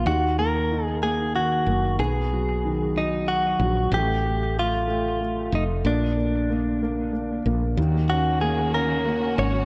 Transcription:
0.05 1.63 D#2 medium
0.05 1.34 D#3 soft
0.05 0.39 F#4 medium
0.39 1.01 A#3 soft
0.39 0.84 A#4 medium
0.71 1.95 D#4 soft
0.84 0.99 G#4 medium
1.03 1.66 A#3 soft
1.03 1.35 G#4 medium
1.36 1.97 D#3 soft
1.36 1.95 F#4 medium
1.66 1.97 F#1 medium
1.66 1.98 A#3 soft
1.99 3.56 B1 medium
1.99 3.88 B3 medium
1.99 2.99 G#4 medium
2.32 2.95 F#3 soft
2.65 3.89 D#3 soft
2.96 3.60 F#3 soft
2.96 3.26 D#4 medium
3.28 3.94 F#4 medium
3.59 3.90 A#1 medium
3.59 3.92 F#3 soft
3.92 5.48 A1 medium
3.92 4.24 A3 medium
3.92 4.59 G4 medium
4.25 4.55 A3 soft
4.57 4.86 A3 soft
4.57 5.57 F4 medium
4.88 5.19 A3 soft
5.20 5.51 A3 soft
5.52 5.83 F1 medium
5.52 5.84 A3 soft
5.52 5.63 D#4 medium
5.85 7.41 A#1 medium
5.85 6.15 A#3 medium
5.85 7.42 D4 medium
6.17 6.49 A#3 soft
6.50 6.81 A#3 soft
6.82 7.11 A#3 soft
7.13 7.45 A#3 soft
7.46 7.76 A#1 medium
7.46 7.77 A#3 soft
7.77 9.34 D#2 medium
7.77 9.65 D#3 medium
7.77 9.65 A#3 medium
7.77 9.65 C#4 medium
7.77 9.65 F#4 medium
8.10 8.73 C#4 soft
8.10 8.40 F#4 medium
8.41 9.04 A#3 soft
8.41 8.74 G#4 medium
8.74 9.36 C#4 soft
8.74 9.34 A#4 medium
9.06 9.65 A#3 soft
9.37 9.65 G#1 medium
9.37 9.65 C#4 soft
9.37 9.65 C#5 medium

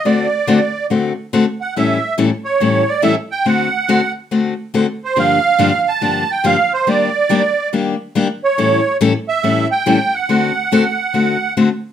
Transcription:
0.05 0.26 D3 medium
0.05 0.26 A3 medium
0.05 0.26 C4 medium
0.05 0.26 F#4 medium
0.05 0.27 A4 medium
0.05 0.86 D5 medium
0.47 0.59 D3 medium
0.47 0.59 A3 medium
0.47 0.59 C4 medium
0.47 0.59 F#4 medium
0.47 0.59 A4 medium
0.90 1.11 D3 medium
0.90 1.12 A3 medium
0.90 1.12 C4 medium
0.90 1.12 F#4 medium
0.90 1.12 A4 medium
1.33 1.44 D3 medium
1.33 1.44 A3 medium
1.33 1.44 C4 medium
1.33 1.44 F#4 medium
1.33 1.45 A4 medium
1.61 1.74 F#5 medium
1.76 1.97 A2 medium
1.76 1.97 E3 medium
1.76 1.97 G3 medium
1.76 1.97 C#4 medium
1.76 1.98 E4 medium
1.76 1.98 A4 medium
1.76 2.16 E5 medium
2.18 2.29 A2 medium
2.18 2.29 E3 medium
2.18 2.29 G3 medium
2.18 2.29 C#4 medium
2.18 2.29 E4 medium
2.18 2.30 A4 medium
2.45 2.90 C#5 medium
2.60 2.82 A2 medium
2.60 2.82 E3 medium
2.60 2.82 G3 medium
2.60 2.82 C#4 medium
2.60 2.82 E4 medium
2.60 2.82 A4 medium
2.89 3.02 D5 medium
3.02 3.14 A2 medium
3.02 3.14 E3 medium
3.02 3.14 G3 medium
3.02 3.14 C#4 medium
3.02 3.14 E4 medium
3.02 3.14 A4 medium
3.02 3.15 E5 medium
3.32 3.47 G5 medium
3.46 3.67 D3 medium
3.46 3.67 A3 medium
3.46 3.67 C4 medium
3.46 3.67 F#4 medium
3.46 3.68 A4 medium
3.46 4.12 F#5 medium
3.88 4.00 D3 medium
3.88 4.00 A3 medium
3.88 4.00 C4 medium
3.88 4.00 F#4 loud
3.88 4.00 A4 medium
4.31 4.53 D3 medium
4.31 4.53 A3 medium
4.31 4.53 C4 medium
4.31 4.53 F#4 medium
4.31 4.53 A4 medium
4.74 4.85 D3 medium
4.74 4.85 A3 medium
4.74 4.85 C4 medium
4.74 4.85 F#4 medium
4.74 4.86 A4 medium
5.05 5.18 C5 medium
5.16 5.38 G2 medium
5.16 5.38 D3 medium
5.16 5.38 F3 medium
5.16 5.38 A#3 medium
5.16 5.38 D4 medium
5.16 5.38 G4 medium
5.16 5.89 F5 loud
5.58 5.70 G2 medium
5.58 5.70 D3 medium
5.58 5.70 F3 medium
5.58 5.70 A#3 medium
5.58 5.71 D4 loud
5.58 5.71 G4 medium
5.89 6.31 A5 medium
6.01 6.23 G2 medium
6.01 6.23 D3 medium
6.01 6.23 F3 medium
6.01 6.23 A#3 medium
6.01 6.23 D4 medium
6.01 6.23 G4 medium
6.31 6.46 G5 medium
6.44 6.55 G2 medium
6.44 6.55 D3 medium
6.44 6.56 F3 medium
6.44 6.56 A#3 medium
6.44 6.56 D4 medium
6.44 6.56 G4 medium
6.44 6.73 F5 medium
6.74 6.88 C5 medium
6.87 7.08 D#3 medium
6.87 7.08 G3 medium
6.87 7.09 A#3 medium
6.87 7.09 D4 medium
6.87 7.09 G4 medium
6.87 7.69 D5 medium
7.29 7.41 D#3 medium
7.29 7.41 G3 medium
7.29 7.41 A#3 medium
7.29 7.41 D4 medium
7.29 7.41 G4 loud
7.73 7.94 D#3 medium
7.73 7.94 G3 medium
7.73 7.94 A#3 medium
7.73 7.94 D4 medium
7.73 7.95 G4 medium
8.15 8.26 D#3 medium
8.15 8.27 G3 medium
8.15 8.27 A#3 medium
8.15 8.27 D4 medium
8.15 8.27 G4 medium
8.44 8.97 C#5 medium
8.58 8.79 A2 medium
8.58 8.79 E3 medium
8.58 8.79 G3 medium
8.58 8.80 C#4 medium
8.58 8.80 E4 medium
8.58 8.80 A4 medium
9.01 9.12 A2 medium
9.01 9.12 E3 loud
9.01 9.12 G3 medium
9.01 9.12 C#4 loud
9.01 9.12 E4 loud
9.01 9.12 A4 loud
9.28 9.68 E5 medium
9.43 9.65 A2 medium
9.43 9.65 E3 medium
9.43 9.65 G3 medium
9.43 9.65 C#4 medium
9.43 9.65 E4 medium
9.43 9.65 A4 medium
9.71 10.15 G5 loud
9.86 9.97 A2 medium
9.86 9.97 E3 medium
9.86 9.98 G3 medium
9.86 9.98 C#4 medium
9.86 9.98 E4 medium
9.86 9.98 A4 medium
10.15 11.53 F#5 medium
10.29 10.50 D3 medium
10.29 10.50 A3 medium
10.29 10.50 C4 medium
10.29 10.51 F#4 medium
10.29 10.51 A4 medium
10.72 10.83 D3 medium
10.72 10.83 A3 medium
10.72 10.83 C4 medium
10.72 10.83 F#4 loud
10.72 10.83 A4 loud
11.14 11.35 D3 medium
11.14 11.35 A3 medium
11.14 11.36 C4 medium
11.14 11.36 F#4 medium
11.14 11.36 A4 medium
11.57 11.68 D3 medium
11.57 11.68 A3 medium
11.57 11.68 C4 medium
11.57 11.68 F#4 medium
11.57 11.68 A4 medium

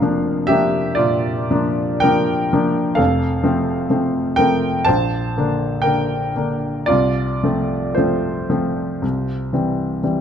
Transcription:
0.00 2.98 F1 medium
0.00 2.98 F2 medium
0.00 0.02 F3 medium
0.00 0.46 F3 medium
0.00 0.03 A#3 medium
0.00 0.46 A#3 medium
0.00 0.03 D4 medium
0.00 0.47 D4 medium
0.00 0.45 A#4 medium
0.00 0.48 F5 loud
0.47 0.95 F3 medium
0.47 0.94 G4 medium
0.47 0.97 E5 loud
0.51 0.95 A#3 medium
0.51 0.96 D4 medium
0.95 1.99 F4 medium
0.95 2.02 D5 medium
0.99 1.50 A#2 medium
1.51 2.00 F3 medium
1.51 2.00 A#3 medium
1.51 2.00 D4 medium
2.00 2.49 F3 medium
2.00 2.94 A#4 medium
2.00 2.97 G5 loud
2.04 2.49 A#3 medium
2.04 2.49 D4 medium
2.53 2.95 F3 medium
2.53 2.95 A#3 medium
2.53 2.95 D4 medium
2.95 3.43 F1 medium
2.95 3.43 F2 medium
2.95 4.34 A4 medium
2.95 4.37 F5 medium
3.44 3.86 F3 medium
3.44 3.87 A3 medium
3.44 3.87 C4 medium
3.90 4.35 F3 medium
3.90 4.35 A3 medium
3.90 4.35 C4 medium
4.36 4.84 F3 medium
4.36 4.85 A3 medium
4.36 4.84 A#4 medium
4.36 4.87 G5 loud
4.40 4.85 C4 medium
4.85 5.36 A#1 medium
4.85 5.80 C5 medium
4.85 5.84 A5 loud
5.37 5.82 D3 medium
5.37 5.82 A#3 medium
5.37 5.82 D4 medium
5.82 6.32 D3 medium
5.82 6.83 A#4 medium
5.82 6.86 G5 loud
5.86 6.32 A#3 soft
5.86 6.32 D4 medium
6.36 6.84 D3 medium
6.36 6.85 A#3 medium
6.36 6.85 D4 medium
6.86 7.42 C2 medium
6.86 7.92 F4 medium
6.86 7.96 D5 medium
7.43 7.93 F3 medium
7.43 7.94 A3 medium
7.43 7.94 C4 medium
7.95 8.47 F3 medium
7.95 8.47 A3 medium
7.95 10.00 F4 medium
7.95 10.04 C5 medium
7.99 8.47 C4 medium
8.50 8.98 F3 medium
8.50 8.98 A3 medium
8.50 8.99 C4 medium
9.02 9.52 C2 medium
9.53 10.00 E3 soft
9.53 10.01 G3 medium
9.53 10.01 C4 medium
10.03 10.21 E3 soft
10.03 10.21 G3 medium
10.03 10.21 C4 medium

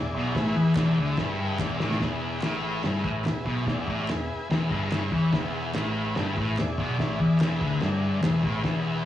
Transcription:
0.00 0.13 E1 medium
0.00 0.11 E2 medium
0.00 0.34 E4 medium
0.00 0.34 G#4 medium
0.00 0.34 D5 medium
0.14 0.34 B1 medium
0.14 0.36 B2 medium
0.35 0.55 A1 loud
0.35 0.57 A2 loud
0.35 0.74 E4 loud
0.35 0.74 G#4 loud
0.35 0.74 B4 loud
0.35 kick loud
0.35 snare loud
0.35 crash medium
0.56 0.75 E2 loud
0.56 0.77 E3 loud
0.75 0.96 E1 medium
0.75 0.97 E2 loud
0.75 1.16 E4 medium
0.75 1.16 G#4 medium
0.75 1.17 D5 medium
0.75 kick loud
0.75 snare loud
0.75 clap loud
0.75 crash medium
0.97 1.17 D2 medium
0.97 1.18 D3 loud
1.17 1.57 G1 medium
1.17 1.59 G2 loud
1.17 1.38 E4 medium
1.17 1.38 G#4 medium
1.17 1.38 B4 loud
1.17 kick loud
1.17 snare loud
1.17 crash medium
1.39 1.59 E4 medium
1.39 1.59 G#4 medium
1.39 1.59 B4 medium
1.59 1.79 E1 medium
1.59 1.80 E2 loud
1.59 1.99 E4 medium
1.59 1.99 G#4 medium
1.59 1.99 D5 medium
1.59 kick loud
1.59 snare medium
1.59 clap loud
1.80 2.00 A1 medium
1.80 2.01 A2 loud
1.80 snare medium
1.91 snare medium
2.00 2.40 E1 medium
2.00 2.42 E2 loud
2.00 2.41 E4 medium
2.00 2.41 G#4 medium
2.00 2.41 B4 medium
2.00 kick loud
2.00 snare loud
2.00 crash medium
2.42 2.81 A1 loud
2.42 2.83 A2 loud
2.42 2.82 E4 medium
2.42 2.83 G#4 medium
2.42 2.83 B4 medium
2.42 snare loud
2.42 clap medium
2.42 crash medium
2.83 3.04 G1 medium
2.83 3.04 G2 loud
2.83 3.24 E4 medium
2.83 3.24 G#4 medium
2.83 3.24 B4 loud
2.83 snare loud
2.83 crash medium
3.03 3.24 A1 medium
3.03 3.24 A2 loud
3.03 kick loud
3.24 3.45 E1 medium
3.24 3.42 E2 medium
3.24 3.65 E4 medium
3.24 3.65 G#4 medium
3.24 3.65 B4 medium
3.24 snare loud
3.24 clap medium
3.24 crash medium
3.46 3.66 B1 medium
3.46 3.66 B2 loud
3.46 kick loud
3.66 3.86 E1 medium
3.66 3.87 E2 loud
3.66 4.07 E4 medium
3.66 4.07 G#4 medium
3.66 4.07 D5 medium
3.66 kick loud
3.66 snare loud
3.66 crash medium
3.87 4.07 A1 loud
3.87 4.09 A2 loud
3.87 kick medium
4.08 4.28 E1 medium
4.08 4.26 E2 medium
4.08 4.48 E4 medium
4.08 4.49 G#4 medium
4.08 4.49 B4 loud
4.08 snare loud
4.08 clap medium
4.08 crash medium
4.50 4.70 E1 medium
4.50 4.71 E2 loud
4.50 4.89 E4 medium
4.50 4.90 G#4 medium
4.50 4.90 B4 medium
4.50 snare loud
4.50 crash medium
4.71 5.10 G1 loud
4.71 5.12 G2 loud
4.71 kick loud
4.91 5.31 E4 medium
4.91 5.31 G#4 medium
4.91 snare loud
4.91 clap medium
4.91 crash medium
4.96 5.32 C#5 medium
5.12 5.31 E2 medium
5.12 5.32 E3 loud
5.12 kick loud
5.32 5.72 E1 loud
5.32 5.74 E2 loud
5.32 5.72 E4 medium
5.32 5.72 G#4 medium
5.32 5.72 B4 loud
5.32 kick loud
5.32 snare loud
5.32 crash medium
5.73 6.13 A1 loud
5.73 6.16 A2 loud
5.73 6.14 E4 medium
5.73 6.14 G#4 medium
5.73 6.14 B4 medium
5.73 snare loud
5.73 clap medium
5.73 crash medium
6.15 6.35 G1 loud
6.15 6.36 G2 loud
6.15 6.56 E4 medium
6.15 6.55 G#4 medium
6.15 6.56 B4 medium
6.15 snare loud
6.15 crash medium
6.36 6.56 A1 loud
6.36 6.57 A2 loud
6.36 kick loud
6.57 6.76 E1 medium
6.57 6.74 E2 medium
6.57 6.98 E4 medium
6.57 snare loud
6.57 clap medium
6.57 crash medium
6.61 6.98 G#4 medium
6.61 6.98 D5 loud
6.78 6.97 B1 medium
6.78 6.99 B2 loud
6.78 kick loud
6.99 7.18 A1 loud
6.99 7.19 A2 loud
6.99 7.38 E4 medium
6.99 7.39 G#4 medium
6.99 7.39 D5 medium
6.99 kick loud
6.99 snare loud
6.99 crash medium
7.20 7.39 E2 medium
7.20 7.40 E3 loud
7.20 kick medium
7.40 7.60 E1 loud
7.40 7.61 E2 loud
7.40 7.80 E4 medium
7.40 7.80 G#4 medium
7.40 7.80 B4 loud
7.40 snare loud
7.40 clap medium
7.40 crash medium
7.61 7.80 D2 medium
7.61 7.81 D3 loud
7.61 kick loud
7.80 8.21 G1 medium
7.80 8.21 G2 loud
7.80 8.21 E4 medium
7.80 8.21 G#4 medium
7.80 8.22 D5 medium
7.80 snare loud
7.80 crash medium
8.22 8.43 E1 medium
8.22 8.42 E2 loud
8.22 8.63 E4 medium
8.22 snare loud
8.22 clap loud
8.22 crash medium
8.26 8.63 G#4 medium
8.26 8.63 B4 medium
8.43 8.63 A1 medium
8.43 8.63 A2 medium
8.43 kick loud
8.63 9.03 E1 loud
8.63 9.05 E2 loud
8.63 9.04 E4 medium
8.63 9.04 G#4 medium
8.63 kick loud
8.63 snare loud
8.63 crash medium
8.67 9.05 B4 medium

